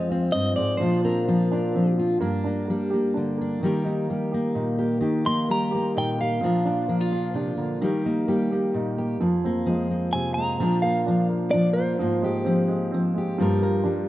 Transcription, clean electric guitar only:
0, 0, Header, 1, 2, 480
1, 0, Start_track
1, 0, Tempo, 465839
1, 835, Time_signature, 3, 2, 24, 8
1, 14513, End_track
2, 0, Start_track
2, 0, Title_t, "Clean electric guitar"
2, 0, Program_c, 0, 27
2, 332, Note_on_c, 0, 75, 87
2, 574, Note_off_c, 0, 75, 0
2, 578, Note_on_c, 0, 74, 84
2, 797, Note_on_c, 0, 72, 90
2, 835, Note_off_c, 0, 74, 0
2, 1039, Note_off_c, 0, 72, 0
2, 1081, Note_on_c, 0, 70, 63
2, 2002, Note_off_c, 0, 70, 0
2, 5422, Note_on_c, 0, 84, 79
2, 5663, Note_off_c, 0, 84, 0
2, 5682, Note_on_c, 0, 82, 89
2, 6113, Note_off_c, 0, 82, 0
2, 6164, Note_on_c, 0, 79, 84
2, 6393, Note_off_c, 0, 79, 0
2, 6395, Note_on_c, 0, 77, 72
2, 7781, Note_off_c, 0, 77, 0
2, 10435, Note_on_c, 0, 80, 82
2, 10652, Note_off_c, 0, 80, 0
2, 10656, Note_on_c, 0, 82, 91
2, 11115, Note_off_c, 0, 82, 0
2, 11150, Note_on_c, 0, 77, 65
2, 11602, Note_off_c, 0, 77, 0
2, 11859, Note_on_c, 0, 74, 93
2, 12092, Note_off_c, 0, 74, 0
2, 12092, Note_on_c, 0, 72, 93
2, 13022, Note_off_c, 0, 72, 0
2, 14513, End_track
0, 0, End_of_file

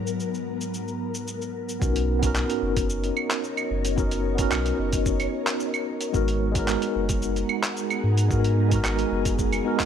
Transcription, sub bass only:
0, 0, Header, 1, 2, 480
1, 0, Start_track
1, 0, Tempo, 540541
1, 1617, Time_signature, 4, 2, 24, 8
1, 8749, End_track
2, 0, Start_track
2, 0, Title_t, "Sub bass"
2, 0, Program_c, 0, 38
2, 1612, Note_on_c, 0, 35, 93
2, 2166, Note_off_c, 0, 35, 0
2, 2330, Note_on_c, 0, 30, 83
2, 2765, Note_off_c, 0, 30, 0
2, 3293, Note_on_c, 0, 30, 103
2, 3966, Note_off_c, 0, 30, 0
2, 4014, Note_on_c, 0, 35, 85
2, 4194, Note_off_c, 0, 35, 0
2, 4254, Note_on_c, 0, 30, 77
2, 4686, Note_off_c, 0, 30, 0
2, 5455, Note_on_c, 0, 32, 98
2, 6008, Note_off_c, 0, 32, 0
2, 6180, Note_on_c, 0, 30, 79
2, 6610, Note_off_c, 0, 30, 0
2, 7137, Note_on_c, 0, 44, 106
2, 7808, Note_off_c, 0, 44, 0
2, 7861, Note_on_c, 0, 32, 81
2, 8038, Note_off_c, 0, 32, 0
2, 8097, Note_on_c, 0, 30, 83
2, 8528, Note_off_c, 0, 30, 0
2, 8749, End_track
0, 0, End_of_file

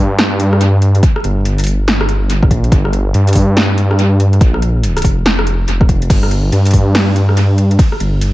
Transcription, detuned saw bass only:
0, 0, Header, 1, 2, 480
1, 0, Start_track
1, 0, Tempo, 422535
1, 1169, Time_signature, 4, 2, 24, 8
1, 9467, End_track
2, 0, Start_track
2, 0, Title_t, "Detuned saw bass"
2, 0, Program_c, 0, 39
2, 0, Note_on_c, 0, 43, 98
2, 1155, Note_off_c, 0, 43, 0
2, 1408, Note_on_c, 0, 31, 96
2, 2834, Note_off_c, 0, 31, 0
2, 2848, Note_on_c, 0, 34, 94
2, 3074, Note_off_c, 0, 34, 0
2, 3088, Note_on_c, 0, 31, 98
2, 3554, Note_off_c, 0, 31, 0
2, 3570, Note_on_c, 0, 43, 98
2, 4995, Note_off_c, 0, 43, 0
2, 5009, Note_on_c, 0, 34, 94
2, 5715, Note_off_c, 0, 34, 0
2, 5729, Note_on_c, 0, 29, 96
2, 6434, Note_off_c, 0, 29, 0
2, 6449, Note_on_c, 0, 29, 97
2, 6915, Note_off_c, 0, 29, 0
2, 6929, Note_on_c, 0, 31, 101
2, 7395, Note_off_c, 0, 31, 0
2, 7409, Note_on_c, 0, 43, 102
2, 8834, Note_off_c, 0, 43, 0
2, 9088, Note_on_c, 0, 31, 97
2, 9467, Note_off_c, 0, 31, 0
2, 9467, End_track
0, 0, End_of_file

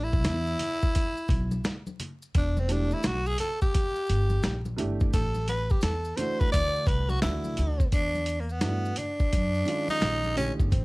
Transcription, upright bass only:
0, 0, Header, 1, 2, 480
1, 0, Start_track
1, 0, Key_signature, 1, "minor"
1, 0, Tempo, 697674
1, 1613, Time_signature, 4, 2, 24, 8
1, 7463, End_track
2, 0, Start_track
2, 0, Title_t, "Upright bass"
2, 0, Program_c, 0, 32
2, 0, Note_on_c, 0, 33, 99
2, 184, Note_off_c, 0, 33, 0
2, 184, Note_on_c, 0, 40, 93
2, 375, Note_off_c, 0, 40, 0
2, 886, Note_on_c, 0, 35, 94
2, 1084, Note_off_c, 0, 35, 0
2, 1617, Note_on_c, 0, 28, 102
2, 2006, Note_off_c, 0, 28, 0
2, 2099, Note_on_c, 0, 35, 85
2, 2292, Note_off_c, 0, 35, 0
2, 2818, Note_on_c, 0, 31, 97
2, 3011, Note_off_c, 0, 31, 0
2, 3058, Note_on_c, 0, 34, 107
2, 3252, Note_off_c, 0, 34, 0
2, 3300, Note_on_c, 0, 31, 88
2, 3493, Note_off_c, 0, 31, 0
2, 3533, Note_on_c, 0, 33, 96
2, 3924, Note_off_c, 0, 33, 0
2, 4012, Note_on_c, 0, 40, 93
2, 4208, Note_off_c, 0, 40, 0
2, 4499, Note_on_c, 0, 38, 106
2, 4692, Note_off_c, 0, 38, 0
2, 4726, Note_on_c, 0, 36, 93
2, 4924, Note_off_c, 0, 36, 0
2, 4979, Note_on_c, 0, 38, 102
2, 5172, Note_off_c, 0, 38, 0
2, 5220, Note_on_c, 0, 38, 92
2, 5412, Note_off_c, 0, 38, 0
2, 5453, Note_on_c, 0, 40, 86
2, 5942, Note_off_c, 0, 40, 0
2, 5942, Note_on_c, 0, 43, 79
2, 6134, Note_off_c, 0, 43, 0
2, 6419, Note_on_c, 0, 42, 89
2, 6612, Note_off_c, 0, 42, 0
2, 6895, Note_on_c, 0, 34, 91
2, 7215, Note_off_c, 0, 34, 0
2, 7291, Note_on_c, 0, 31, 87
2, 7359, Note_off_c, 0, 31, 0
2, 7376, Note_on_c, 0, 33, 83
2, 7463, Note_off_c, 0, 33, 0
2, 7463, End_track
0, 0, End_of_file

